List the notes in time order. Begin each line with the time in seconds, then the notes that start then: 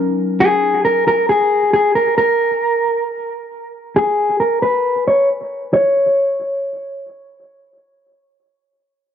Already playing: F#3 C#4 D#4 A#4
0.40 G#4
0.85 A#4
1.08 A#4
1.29 G#4
1.73 G#4
1.95 A#4
2.18 A#4
3.96 G#4
4.40 A#4
4.62 B4
5.08 C#5
5.74 C#5